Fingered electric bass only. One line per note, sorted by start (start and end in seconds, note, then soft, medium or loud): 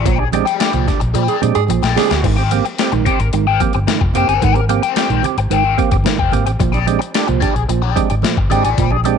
0.05 0.42 A#1 loud
0.74 0.86 C2 medium
1.02 1.13 A#1 medium
1.15 1.27 A#2 loud
1.43 1.55 A#2 medium
1.56 1.68 G#2 medium
1.70 1.81 A#1 medium
1.83 1.95 A#1 medium
2.11 2.22 D2 medium
2.24 2.60 G#1 loud
2.92 3.04 A#1 medium
3.20 3.32 G#1 medium
3.34 3.57 G#1 loud
3.75 3.87 G1 medium
4.01 4.13 F1 medium
4.16 4.27 F#1 loud
4.29 4.41 G1 medium
4.42 4.78 G#1 loud
5.10 5.22 A#1 medium
5.37 5.49 G#1 medium
5.50 5.75 G#1 medium
5.92 6.04 G1 medium
6.19 6.31 F1 medium
6.33 6.45 G#1 loud
6.47 6.58 A1 medium
6.60 6.96 A#1 loud
7.29 7.40 C2 loud
7.56 7.67 A#1 medium
7.69 7.93 A#1 loud
8.11 8.22 G#1 loud
8.37 8.49 G1 medium
8.51 8.63 G#1 medium
8.65 8.76 A1 medium
8.78 9.14 A#1 loud